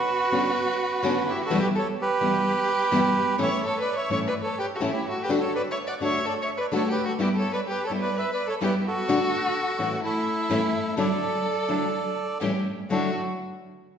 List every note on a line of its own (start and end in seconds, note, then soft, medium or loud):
0.00 1.23 F#4 medium
0.00 1.24 F#4 medium
0.00 1.33 B4 loud
0.32 0.49 D3 medium
0.32 0.52 D3 soft
0.32 0.49 B3 medium
0.32 0.52 B3 soft
0.32 0.52 C#4 soft
0.32 0.49 C#4 medium
0.32 0.52 D4 medium
0.32 0.49 F#4 medium
1.03 1.12 D3 medium
1.03 1.23 D3 medium
1.03 1.12 B3 medium
1.03 1.23 B3 medium
1.03 1.23 C#4 medium
1.03 1.12 C#4 loud
1.03 1.23 D4 loud
1.03 1.12 F#4 loud
1.29 1.42 E4 medium
1.29 1.44 G4 medium
1.44 1.58 F#4 medium
1.44 1.59 F#4 medium
1.44 1.60 A4 loud
1.50 1.59 E2 medium
1.50 1.59 B2 loud
1.50 1.59 E3 medium
1.50 1.70 G3 medium
1.50 1.59 G3 loud
1.50 1.70 B3 medium
1.50 1.59 B3 loud
1.50 1.70 E4 medium
1.50 1.60 E4 loud
1.59 1.66 G4 medium
1.59 1.68 G4 medium
1.59 1.69 B4 loud
1.75 1.85 A4 medium
1.75 1.87 A4 medium
1.75 1.88 C#5 loud
1.99 3.35 G4 medium
1.99 3.36 G4 medium
1.99 3.37 B4 loud
2.20 2.37 E2 medium
2.20 2.37 B2 medium
2.20 2.38 E3 medium
2.20 2.40 G3 medium
2.20 2.38 G3 medium
2.20 2.40 B3 soft
2.20 2.38 B3 medium
2.20 2.40 E4 medium
2.20 2.38 E4 medium
2.91 3.00 E2 medium
2.91 3.01 B2 medium
2.91 3.00 E3 medium
2.91 3.11 G3 medium
2.91 3.01 G3 medium
2.91 3.11 B3 medium
2.91 3.01 B3 loud
2.91 3.11 E4 medium
2.91 3.01 E4 loud
3.38 3.47 A2 medium
3.38 3.47 E3 medium
3.38 3.58 A3 medium
3.38 3.48 A3 loud
3.38 3.58 C#4 medium
3.38 3.47 C#4 loud
3.38 3.58 E4 medium
3.38 3.48 E4 medium
3.38 3.61 C#5 medium
3.42 3.62 C#5 medium
3.42 3.65 E5 medium
3.64 3.78 A4 medium
3.64 3.79 A4 medium
3.64 3.79 C#5 medium
3.80 3.93 B4 medium
3.80 3.94 B4 medium
3.80 3.96 D5 medium
3.95 4.09 C#5 medium
3.95 4.10 C#5 medium
3.95 4.10 E5 loud
4.09 4.26 A2 medium
4.09 4.26 E3 medium
4.09 4.29 A3 soft
4.09 4.27 A3 medium
4.09 4.29 C#4 soft
4.09 4.27 C#4 medium
4.09 4.29 E4 medium
4.09 4.27 E4 medium
4.09 4.18 C#5 medium
4.09 4.19 E5 medium
4.27 4.34 B4 medium
4.27 4.35 D5 medium
4.43 4.57 A4 medium
4.43 4.59 C#5 medium
4.58 4.65 G4 medium
4.58 4.66 G4 medium
4.58 4.66 B4 medium
4.74 4.81 F#4 medium
4.74 4.82 F#4 medium
4.74 4.82 A4 medium
4.80 4.90 A2 medium
4.80 4.90 E3 medium
4.80 5.01 A3 medium
4.80 4.90 A3 medium
4.80 5.01 C#4 medium
4.80 4.90 C#4 medium
4.80 5.01 E4 medium
4.80 4.90 E4 loud
4.91 5.05 E4 medium
4.91 5.07 G4 medium
5.08 5.21 F#4 medium
5.08 5.22 F#4 medium
5.08 5.22 A4 medium
5.23 5.30 G4 medium
5.23 5.31 B4 medium
5.29 5.38 D3 medium
5.29 5.49 A3 medium
5.29 5.38 A3 medium
5.29 5.49 D4 medium
5.29 5.39 D4 medium
5.29 5.49 F#4 medium
5.29 5.39 F#4 medium
5.39 5.53 A4 medium
5.39 5.54 C#5 medium
5.55 5.62 B4 medium
5.55 5.62 D5 medium
5.71 5.78 C#5 medium
5.71 5.79 E5 medium
5.87 5.94 D5 medium
5.87 5.95 F#5 medium
6.00 6.18 D3 medium
6.00 6.21 A3 medium
6.00 6.18 A3 medium
6.00 6.21 D4 soft
6.00 6.18 D4 medium
6.00 6.21 F#4 medium
6.00 6.18 F#4 medium
6.00 6.24 C#5 medium
6.00 6.25 C#5 medium
6.05 6.27 E5 medium
6.26 6.33 A4 medium
6.26 6.34 A4 medium
6.26 6.35 D5 medium
6.42 6.49 C#5 medium
6.42 6.50 C#5 medium
6.42 6.51 E5 medium
6.57 6.64 B4 medium
6.57 6.66 B4 medium
6.57 6.67 D5 loud
6.72 6.81 D3 medium
6.72 6.92 A3 medium
6.72 6.81 A3 medium
6.72 6.92 D4 medium
6.72 6.81 D4 medium
6.72 6.92 F#4 medium
6.72 6.82 F#4 loud
6.72 6.87 A4 medium
6.72 6.89 A4 medium
6.76 6.89 C#5 medium
6.89 7.03 G4 medium
6.89 7.04 G4 medium
6.89 7.05 B4 medium
7.05 7.12 F#4 medium
7.05 7.13 F#4 medium
7.05 7.14 A4 medium
7.19 7.28 G3 medium
7.19 7.39 B3 medium
7.19 7.28 B3 medium
7.19 7.39 E4 medium
7.19 7.29 E4 loud
7.19 7.39 G4 medium
7.19 7.27 G4 medium
7.19 7.29 G4 medium
7.23 7.29 B4 medium
7.36 7.50 A4 medium
7.36 7.52 A4 medium
7.36 7.52 C#5 medium
7.53 7.60 B4 medium
7.53 7.61 D5 medium
7.68 7.82 G4 medium
7.68 7.83 G4 medium
7.68 7.85 B4 medium
7.84 7.91 A4 medium
7.84 7.92 A4 medium
7.84 7.93 C#5 medium
7.90 8.07 G3 medium
7.90 8.10 B3 soft
7.90 8.07 B3 medium
7.90 8.10 E4 soft
7.90 8.08 E4 medium
7.90 8.10 G4 medium
8.00 8.14 B4 medium
8.00 8.15 B4 medium
8.00 8.17 D5 medium
8.16 8.30 B4 medium
8.16 8.31 B4 medium
8.16 8.31 E5 loud
8.31 8.45 B4 medium
8.31 8.46 B4 medium
8.31 8.48 D5 medium
8.47 8.54 A4 medium
8.47 8.55 A4 medium
8.47 8.56 C#5 loud
8.61 8.70 G3 medium
8.61 8.81 B3 medium
8.61 8.70 B3 loud
8.61 8.81 E4 medium
8.61 8.70 E4 loud
8.61 8.81 G4 medium
8.61 8.73 G4 medium
8.61 8.74 G4 medium
8.65 8.75 B4 medium
8.86 10.00 F#4 medium
8.86 10.00 A4 medium
9.08 9.17 A2 loud
9.08 9.17 D3 medium
9.08 9.28 A3 medium
9.08 9.18 A3 medium
9.08 9.28 D4 medium
9.08 9.18 D4 loud
9.08 9.28 F#4 medium
9.08 9.18 F#4 loud
9.78 9.96 A2 medium
9.78 9.96 E3 medium
9.78 9.99 A3 medium
9.78 9.96 A3 medium
9.78 9.96 C#4 medium
9.78 9.99 D4 soft
9.78 9.96 E4 medium
9.78 9.99 F#4 medium
10.02 10.22 A3 medium
10.02 10.22 C#4 medium
10.02 10.22 E4 loud
10.02 10.94 E4 medium
10.02 10.95 A4 loud
10.49 10.59 A2 loud
10.49 10.59 E3 loud
10.49 10.69 A3 medium
10.49 10.59 A3 medium
10.49 10.69 C#4 medium
10.49 10.59 C#4 loud
10.49 10.70 E4 medium
10.49 10.59 E4 loud
10.97 11.06 D3 loud
10.97 11.17 F#3 medium
10.97 11.06 F#3 medium
10.97 11.06 A3 loud
10.97 11.17 D4 medium
10.97 11.06 D4 loud
10.97 11.17 E4 medium
10.97 11.07 E4 loud
10.97 12.38 A4 medium
10.97 12.38 D5 medium
11.68 11.85 D3 medium
11.68 11.88 F#3 medium
11.68 11.86 F#3 medium
11.68 11.86 A3 medium
11.68 11.89 D4 soft
11.68 11.86 D4 medium
11.68 11.89 E4 medium
11.68 11.86 E4 medium
12.40 12.50 A2 medium
12.40 12.51 E3 medium
12.40 12.51 G3 medium
12.40 12.61 A3 medium
12.40 12.61 C#4 medium
12.40 12.51 C#4 medium
12.40 12.51 E4 medium
12.40 12.62 G4 medium
12.89 13.09 D3 medium
12.89 13.10 F#3 medium
12.89 13.10 A3 medium
12.89 13.10 D4 soft
12.89 13.10 D4 medium
12.89 13.10 E4 soft
12.89 13.10 E4 medium
12.89 13.10 F#4 medium
12.89 13.13 F#4 medium
12.89 13.14 A4 medium